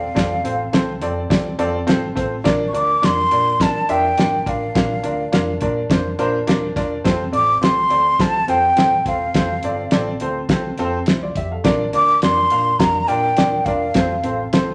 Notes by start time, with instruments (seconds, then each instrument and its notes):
Already playing: flute F5
0.15 fingered electric bass F1, grand piano C4 F4 A4 D5, kick, snare, closed hi-hat
0.44 fingered electric bass A1, grand piano C4 F4 A4 C5, closed hi-hat
0.73 fingered electric bass C2, grand piano C4 F4 A4 C5, snare, closed hi-hat
1.02 fingered electric bass F2, grand piano C4 F4 A4 D5, closed hi-hat
1.30 fingered electric bass C2, grand piano C4 F4 A4 D5, kick, snare, closed hi-hat
1.59 fingered electric bass F2, grand piano C4 F4 A4 D5, closed hi-hat
1.87 fingered electric bass G#1, grand piano C4 F4 A4 C5, snare, closed hi-hat
2.15 fingered electric bass A1, grand piano C4 F4 A4 C5, kick, closed hi-hat
2.44 fingered electric bass A#1, grand piano D4 F4 A#4 D5, kick, snare, closed hi-hat
2.68 flute C#6
2.73 fingered electric bass D2, grand piano D4 F4 A#4 D5, flute D6, closed hi-hat
3.02 fingered electric bass F2, grand piano D4 F4 A#4 D5, flute C6, snare, closed hi-hat
3.31 fingered electric bass A#2, grand piano D4 F4 A#4 D5, closed hi-hat
3.60 grand piano D4 F4 A#4 D5, flute A5, kick, snare, closed hi-hat
3.89 fingered electric bass F2, grand piano D4 F4 A#4 E5, flute G5, closed hi-hat
4.18 fingered electric bass G#1, grand piano D4 F4 A#4 D5, snare, closed hi-hat
4.46 fingered electric bass A1, grand piano D4 F4 A#4 D5, flute F5, kick, closed hi-hat
4.75 fingered electric bass A#1, grand piano D4 F4 A#4 F5, kick, snare, closed hi-hat
5.03 fingered electric bass D2, grand piano D4 F4 A#4 D5, closed hi-hat
5.32 fingered electric bass F2, grand piano D4 F4 A#4 F5, snare, closed hi-hat
5.61 fingered electric bass A#2, grand piano D4 F4 A#4 D5, kick, closed hi-hat
5.90 fingered electric bass F2, grand piano D4 F4 A#4 C5, kick, snare, closed hi-hat
6.19 fingered electric bass A#2, grand piano D4 F4 A#4 C5, closed hi-hat
6.47 fingered electric bass D#1, grand piano D4 F4 A#4 D5, snare, closed hi-hat
6.76 fingered electric bass E1, grand piano D4 F4 A#4 D5, kick, snare, closed hi-hat
7.04 fingered electric bass F1, grand piano C4 F4 A4 C5, kick, snare, closed hi-hat
7.32 fingered electric bass A1, grand piano C4 F4 A4 D5, flute D6, closed hi-hat
7.61 fingered electric bass C2, grand piano C4 F4 A4 C5, flute C6, snare, closed hi-hat
7.90 fingered electric bass D2, grand piano C4 F4 A4 D5, closed hi-hat
8.19 fingered electric bass C2, grand piano C4 F4 A4 C5, flute A5, kick, snare, closed hi-hat
8.48 fingered electric bass F2, grand piano C4 F4 A4 C5, flute G5, closed hi-hat
8.76 fingered electric bass D#1, grand piano C4 F4 A4 C5, snare, closed hi-hat
9.05 fingered electric bass E1, grand piano C4 F4 A4 C5, flute F5, kick, closed hi-hat
9.34 fingered electric bass F1, grand piano C4 F4 A4 C5, kick, snare, closed hi-hat
9.63 fingered electric bass G1, grand piano C4 F4 A4 D5, closed hi-hat
9.91 fingered electric bass A1, grand piano C4 F4 A4 D5, snare, closed hi-hat
10.20 fingered electric bass D2, grand piano C4 F4 A4 C5, closed hi-hat
10.49 fingered electric bass C2, grand piano C4 F4 A4 C5, kick, snare, closed hi-hat
10.78 fingered electric bass F2, grand piano C4 F4 A4 C5, closed hi-hat
11.06 grand piano E4 C5, snare, closed hi-hat
11.23 grand piano F4 D5
11.35 fingered electric bass F2, grand piano G4 E5, kick, closed hi-hat
11.52 grand piano A4 F5
11.64 fingered electric bass A#1, grand piano D4 F4 A#4 D5, kick, snare, closed hi-hat
11.93 fingered electric bass D2, grand piano D4 F4 A#4 D5, flute D6, closed hi-hat
12.22 fingered electric bass F2, grand piano D4 F4 A#4 D5, flute C6, snare, closed hi-hat
12.50 fingered electric bass A#2, grand piano D4 F4 A#4 F5, closed hi-hat
12.79 fingered electric bass F2, grand piano D4 F4 A#4 F5, flute A#5, kick, snare, closed hi-hat
13.08 fingered electric bass A#2, grand piano D4 F4 A#4 D5, flute G5, closed hi-hat
13.37 fingered electric bass D#1, grand piano D4 F4 A#4 D5, snare, closed hi-hat
13.65 fingered electric bass E1, grand piano D4 F4 A#4 D5, flute F5, kick, closed hi-hat
13.94 fingered electric bass F1, grand piano C4 F4 A4 C5, kick, snare, closed hi-hat
14.24 fingered electric bass A1, grand piano C4 F4 A4 C5, closed hi-hat
14.53 fingered electric bass C2, grand piano C4 F4 A4 C5, snare, closed hi-hat